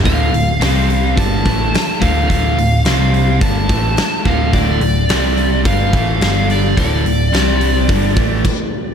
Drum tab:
CC |--------|--------|--------|------x-|
HH |oooooooo|oooooooo|oooooooo|oooooo--|
SD |--o---o-|--o---o-|--o---o-|--o-----|
BD |o---oo-o|o---oo-o|o---oo--|o---ooo-|